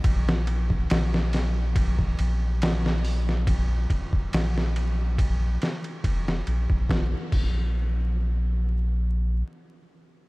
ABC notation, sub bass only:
X:1
M:4/4
L:1/16
Q:"Swing 16ths" 1/4=70
K:Fm
V:1 name="Sub bass" clef=bass
B,,,4 B,,,6 B,,,6- | B,,,2 z2 B,,,6 z2 F,,,2 B,,, B,,, | B,,, z B,,,8- B,,,2 z4 |]